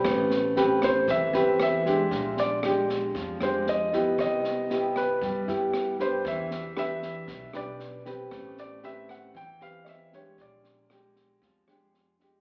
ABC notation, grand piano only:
X:1
M:4/4
L:1/8
Q:1/4=116
K:Am
V:1 name="Grand piano"
z3 c e2 e2- | e d2 z2 c _e2 | _e3 B2 z2 c | e2 e3 d2 z |
z d e ^f g =f [_e=e] _d | d4 z4 |]